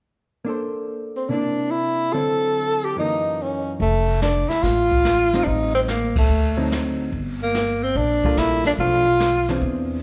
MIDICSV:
0, 0, Header, 1, 6, 480
1, 0, Start_track
1, 0, Key_signature, -1, "major"
1, 0, Tempo, 416378
1, 525, Time_signature, 4, 2, 24, 8
1, 11558, End_track
2, 0, Start_track
2, 0, Title_t, "Tenor saxophone"
2, 0, Program_c, 0, 66
2, 1343, Note_on_c, 0, 60, 65
2, 1489, Note_on_c, 0, 62, 75
2, 1506, Note_off_c, 0, 60, 0
2, 1969, Note_on_c, 0, 64, 78
2, 1987, Note_off_c, 0, 62, 0
2, 2452, Note_on_c, 0, 69, 96
2, 2469, Note_off_c, 0, 64, 0
2, 3277, Note_on_c, 0, 67, 80
2, 3295, Note_off_c, 0, 69, 0
2, 3426, Note_off_c, 0, 67, 0
2, 3446, Note_on_c, 0, 63, 82
2, 3945, Note_on_c, 0, 61, 66
2, 3962, Note_off_c, 0, 63, 0
2, 4324, Note_off_c, 0, 61, 0
2, 4397, Note_on_c, 0, 57, 78
2, 4835, Note_off_c, 0, 57, 0
2, 4866, Note_on_c, 0, 62, 77
2, 5173, Note_on_c, 0, 64, 83
2, 5190, Note_off_c, 0, 62, 0
2, 5335, Note_on_c, 0, 65, 98
2, 5352, Note_off_c, 0, 64, 0
2, 6270, Note_on_c, 0, 62, 60
2, 6287, Note_off_c, 0, 65, 0
2, 6315, Note_on_c, 0, 63, 85
2, 6332, Note_off_c, 0, 62, 0
2, 6617, Note_off_c, 0, 63, 0
2, 6624, Note_on_c, 0, 60, 79
2, 6694, Note_off_c, 0, 60, 0
2, 6798, Note_on_c, 0, 58, 68
2, 7088, Note_off_c, 0, 58, 0
2, 7125, Note_on_c, 0, 57, 72
2, 7704, Note_off_c, 0, 57, 0
2, 8561, Note_on_c, 0, 58, 78
2, 9030, Note_on_c, 0, 60, 77
2, 9047, Note_off_c, 0, 58, 0
2, 9183, Note_on_c, 0, 62, 89
2, 9201, Note_off_c, 0, 60, 0
2, 9664, Note_on_c, 0, 64, 89
2, 9682, Note_off_c, 0, 62, 0
2, 9979, Note_off_c, 0, 64, 0
2, 9991, Note_on_c, 0, 62, 76
2, 10057, Note_off_c, 0, 62, 0
2, 10142, Note_on_c, 0, 65, 96
2, 11046, Note_off_c, 0, 65, 0
2, 11558, End_track
3, 0, Start_track
3, 0, Title_t, "Hollow-body jazz guitar"
3, 0, Program_c, 1, 26
3, 513, Note_on_c, 1, 58, 44
3, 533, Note_on_c, 1, 62, 48
3, 556, Note_on_c, 1, 69, 51
3, 569, Note_on_c, 1, 72, 50
3, 1484, Note_off_c, 1, 58, 0
3, 1488, Note_on_c, 1, 48, 40
3, 1494, Note_off_c, 1, 62, 0
3, 1505, Note_on_c, 1, 58, 46
3, 1506, Note_off_c, 1, 69, 0
3, 1512, Note_off_c, 1, 72, 0
3, 1527, Note_on_c, 1, 62, 43
3, 1539, Note_on_c, 1, 64, 45
3, 2454, Note_off_c, 1, 48, 0
3, 2462, Note_off_c, 1, 58, 0
3, 2467, Note_off_c, 1, 62, 0
3, 2467, Note_on_c, 1, 50, 43
3, 2468, Note_off_c, 1, 64, 0
3, 2469, Note_on_c, 1, 54, 40
3, 2471, Note_on_c, 1, 60, 45
3, 2482, Note_on_c, 1, 64, 44
3, 3411, Note_on_c, 1, 42, 48
3, 3424, Note_off_c, 1, 50, 0
3, 3425, Note_off_c, 1, 54, 0
3, 3426, Note_off_c, 1, 60, 0
3, 3431, Note_off_c, 1, 64, 0
3, 3434, Note_on_c, 1, 52, 48
3, 3454, Note_on_c, 1, 58, 49
3, 3465, Note_on_c, 1, 63, 56
3, 4376, Note_off_c, 1, 42, 0
3, 4387, Note_off_c, 1, 52, 0
3, 4397, Note_off_c, 1, 58, 0
3, 4403, Note_off_c, 1, 63, 0
3, 6153, Note_on_c, 1, 55, 48
3, 6160, Note_on_c, 1, 60, 53
3, 6166, Note_on_c, 1, 63, 59
3, 6751, Note_off_c, 1, 55, 0
3, 6755, Note_off_c, 1, 60, 0
3, 6758, Note_off_c, 1, 63, 0
3, 7576, Note_on_c, 1, 54, 59
3, 7578, Note_on_c, 1, 50, 49
3, 7580, Note_on_c, 1, 60, 55
3, 7588, Note_on_c, 1, 63, 57
3, 8181, Note_off_c, 1, 54, 0
3, 8182, Note_off_c, 1, 50, 0
3, 8183, Note_off_c, 1, 60, 0
3, 8187, Note_off_c, 1, 63, 0
3, 9507, Note_on_c, 1, 55, 59
3, 9514, Note_on_c, 1, 58, 61
3, 9517, Note_on_c, 1, 65, 68
3, 9519, Note_on_c, 1, 69, 62
3, 10104, Note_off_c, 1, 55, 0
3, 10107, Note_off_c, 1, 58, 0
3, 10109, Note_off_c, 1, 65, 0
3, 10110, Note_off_c, 1, 69, 0
3, 10132, Note_on_c, 1, 53, 49
3, 10143, Note_on_c, 1, 57, 54
3, 10150, Note_on_c, 1, 62, 55
3, 10420, Note_off_c, 1, 53, 0
3, 10425, Note_off_c, 1, 57, 0
3, 10429, Note_off_c, 1, 62, 0
3, 10942, Note_on_c, 1, 52, 58
3, 10952, Note_on_c, 1, 62, 62
3, 10953, Note_on_c, 1, 60, 65
3, 10960, Note_on_c, 1, 68, 66
3, 11540, Note_off_c, 1, 52, 0
3, 11545, Note_off_c, 1, 60, 0
3, 11545, Note_off_c, 1, 62, 0
3, 11549, Note_off_c, 1, 68, 0
3, 11558, End_track
4, 0, Start_track
4, 0, Title_t, "Upright bass"
4, 0, Program_c, 2, 32
4, 4379, Note_on_c, 2, 29, 71
4, 5136, Note_off_c, 2, 29, 0
4, 5334, Note_on_c, 2, 33, 76
4, 6249, Note_off_c, 2, 33, 0
4, 6301, Note_on_c, 2, 33, 76
4, 7211, Note_off_c, 2, 33, 0
4, 7248, Note_on_c, 2, 38, 78
4, 8163, Note_off_c, 2, 38, 0
4, 8209, Note_on_c, 2, 31, 75
4, 9122, Note_off_c, 2, 31, 0
4, 9171, Note_on_c, 2, 34, 79
4, 9616, Note_off_c, 2, 34, 0
4, 9645, Note_on_c, 2, 34, 69
4, 10092, Note_off_c, 2, 34, 0
4, 10123, Note_on_c, 2, 35, 74
4, 11037, Note_off_c, 2, 35, 0
4, 11084, Note_on_c, 2, 40, 72
4, 11558, Note_off_c, 2, 40, 0
4, 11558, End_track
5, 0, Start_track
5, 0, Title_t, "Muted upright bass strokes"
5, 5176, Note_on_c, 9, 29, 34
5, 5291, Note_off_c, 9, 29, 0
5, 11558, End_track
6, 0, Start_track
6, 0, Title_t, "Drums"
6, 4385, Note_on_c, 9, 36, 31
6, 4387, Note_on_c, 9, 25, 46
6, 4500, Note_off_c, 9, 36, 0
6, 4861, Note_on_c, 9, 44, 43
6, 4863, Note_on_c, 9, 38, 49
6, 4976, Note_off_c, 9, 44, 0
6, 4978, Note_off_c, 9, 38, 0
6, 5187, Note_on_c, 9, 38, 32
6, 5303, Note_off_c, 9, 38, 0
6, 5340, Note_off_c, 9, 25, 0
6, 5340, Note_on_c, 9, 25, 40
6, 5340, Note_on_c, 9, 38, 33
6, 5341, Note_on_c, 9, 36, 28
6, 5456, Note_off_c, 9, 36, 0
6, 5456, Note_off_c, 9, 38, 0
6, 5666, Note_on_c, 9, 36, 44
6, 5782, Note_off_c, 9, 36, 0
6, 5819, Note_on_c, 9, 44, 48
6, 5821, Note_on_c, 9, 38, 53
6, 5934, Note_off_c, 9, 44, 0
6, 5936, Note_off_c, 9, 38, 0
6, 6147, Note_on_c, 9, 38, 32
6, 6263, Note_off_c, 9, 38, 0
6, 6300, Note_on_c, 9, 36, 27
6, 6302, Note_off_c, 9, 25, 0
6, 6302, Note_on_c, 9, 25, 40
6, 6416, Note_off_c, 9, 36, 0
6, 6777, Note_on_c, 9, 44, 43
6, 6779, Note_on_c, 9, 38, 53
6, 6892, Note_off_c, 9, 44, 0
6, 6894, Note_off_c, 9, 38, 0
6, 7100, Note_on_c, 9, 36, 74
6, 7101, Note_on_c, 9, 51, 67
6, 7216, Note_off_c, 9, 36, 0
6, 7216, Note_off_c, 9, 51, 0
6, 7262, Note_off_c, 9, 25, 0
6, 7262, Note_on_c, 9, 25, 44
6, 7744, Note_on_c, 9, 44, 54
6, 7746, Note_on_c, 9, 38, 57
6, 7859, Note_off_c, 9, 44, 0
6, 7861, Note_off_c, 9, 38, 0
6, 8216, Note_on_c, 9, 36, 29
6, 8223, Note_off_c, 9, 25, 0
6, 8223, Note_on_c, 9, 25, 43
6, 8332, Note_off_c, 9, 36, 0
6, 8696, Note_on_c, 9, 44, 43
6, 8698, Note_on_c, 9, 38, 52
6, 8811, Note_off_c, 9, 44, 0
6, 8813, Note_off_c, 9, 38, 0
6, 9171, Note_on_c, 9, 36, 30
6, 9174, Note_off_c, 9, 25, 0
6, 9174, Note_on_c, 9, 25, 42
6, 9286, Note_off_c, 9, 36, 0
6, 9496, Note_on_c, 9, 36, 44
6, 9612, Note_off_c, 9, 36, 0
6, 9651, Note_on_c, 9, 44, 48
6, 9653, Note_on_c, 9, 38, 54
6, 9766, Note_off_c, 9, 44, 0
6, 9768, Note_off_c, 9, 38, 0
6, 9966, Note_on_c, 9, 38, 33
6, 10081, Note_off_c, 9, 38, 0
6, 10122, Note_off_c, 9, 25, 0
6, 10122, Note_on_c, 9, 25, 44
6, 10127, Note_on_c, 9, 36, 29
6, 10242, Note_off_c, 9, 36, 0
6, 10606, Note_on_c, 9, 44, 49
6, 10608, Note_on_c, 9, 38, 50
6, 10721, Note_off_c, 9, 44, 0
6, 10723, Note_off_c, 9, 38, 0
6, 10931, Note_on_c, 9, 38, 35
6, 11046, Note_off_c, 9, 38, 0
6, 11085, Note_off_c, 9, 25, 0
6, 11085, Note_on_c, 9, 25, 40
6, 11086, Note_on_c, 9, 36, 29
6, 11201, Note_off_c, 9, 36, 0
6, 11558, Note_off_c, 9, 25, 0
6, 11558, End_track
0, 0, End_of_file